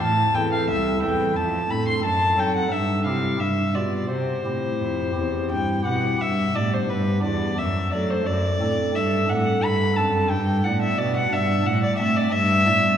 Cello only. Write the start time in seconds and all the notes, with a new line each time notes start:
0.01 A2
0.35 E2
0.68 C2
1.02 E2
1.36 F2
1.69 A2
2.03 F#2
2.37 F#3
2.71 G2
3.06 C3
3.40 G2
3.75 B2
4.09 C3
4.45 A2
4.80 F2
5.15 E2
5.51 G2
5.86 B2
6.21 G2
6.55 A2
6.89 G2
7.23 E2
7.58 F#2
7.91 F#3
8.25 F#2
8.60 A2
8.94 G2
9.29 A2
9.63 G2
9.97 F#2
10.31 G2
10.64 A2
10.99 B2
11.32 G2
11.66 A2
11.99 A3
12.32 G2
12.66 A2